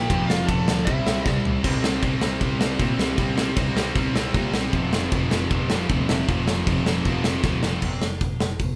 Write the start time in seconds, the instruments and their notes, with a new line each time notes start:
Already playing: lead electric guitar G4 G5
0.10 picked electric bass F1, overdriven electric guitar F2 C3 F3, kick, ride
0.26 picked electric bass F1, lead electric guitar F4 F5, snare
0.46 picked electric bass F1, lead electric guitar A4 A5, kick, ride
0.68 picked electric bass D2, snare
0.85 picked electric bass C2, overdriven electric guitar C3 G3 C4, lead electric guitar E4 E5, kick, ride
1.06 picked electric bass C2, snare
1.26 picked electric bass C2, lead electric guitar D5, kick, snare
1.45 picked electric bass C2, floor tom
1.64 picked electric bass C2, overdriven electric guitar C3 G3 C4, kick, crash
1.83 picked electric bass C2, overdriven electric guitar C3 G3 C4, snare
2.03 picked electric bass C2, overdriven electric guitar C3 G3 C4, kick, crash
2.22 picked electric bass C2, overdriven electric guitar C3 G3 C4, snare
2.41 picked electric bass C2, overdriven electric guitar C3 G3 C4, kick, crash
2.60 picked electric bass C2, overdriven electric guitar C3 G3 C4, snare
2.79 picked electric bass A#2, overdriven electric guitar C3 G3 C4, kick, crash
2.98 picked electric bass C2, overdriven electric guitar C3 G3 C4, snare
3.18 picked electric bass C2, overdriven electric guitar C3 G3 C4, kick, crash
3.37 picked electric bass C2, overdriven electric guitar C3 G3 C4, snare
3.57 picked electric bass C2, overdriven electric guitar C3 G3 C4, kick, crash
3.76 picked electric bass C2, overdriven electric guitar C3 G3 C4, snare
3.95 picked electric bass C2, overdriven electric guitar C3 G3 C4, kick, crash
4.14 picked electric bass C2, overdriven electric guitar C3 G3 C4, snare
4.34 picked electric bass A#2, overdriven electric guitar C3 G3 C4, kick, crash
4.53 picked electric bass C2, overdriven electric guitar C3 G3 C4, snare
4.73 picked electric bass F1, overdriven electric guitar F2 C3 F3, kick, crash
4.91 picked electric bass F1, overdriven electric guitar F2 C3 F3, snare
5.12 picked electric bass F1, overdriven electric guitar F2 C3 F3, kick, crash
5.31 picked electric bass F1, overdriven electric guitar F2 C3 F3, snare
5.50 picked electric bass F1, overdriven electric guitar F2 C3 F3, kick, crash
5.70 picked electric bass F1, overdriven electric guitar F2 C3 F3, snare
5.89 picked electric bass D2, overdriven electric guitar F2 C3 F3, kick, crash
6.09 picked electric bass F1, overdriven electric guitar F2 C3 F3, snare
6.28 picked electric bass F1, overdriven electric guitar F2 C3 F3, kick, crash
6.47 picked electric bass F1, overdriven electric guitar F2 C3 F3, snare
6.67 picked electric bass F1, overdriven electric guitar F2 C3 F3, kick, crash
6.86 picked electric bass F1, overdriven electric guitar F2 C3 F3, snare
7.05 picked electric bass F1, overdriven electric guitar F2 C3 F3, kick, crash
7.24 picked electric bass F1, overdriven electric guitar F2 C3 F3, snare
7.43 picked electric bass D2, overdriven electric guitar F2 C3 F3, kick, snare
7.62 picked electric bass F1, overdriven electric guitar F2 C3 F3, snare
7.82 picked electric bass F1, kick, crash
8.01 picked electric bass F1, snare
8.21 picked electric bass F1, kick, open hi-hat
8.40 picked electric bass F1, snare
8.59 picked electric bass F1, kick, open hi-hat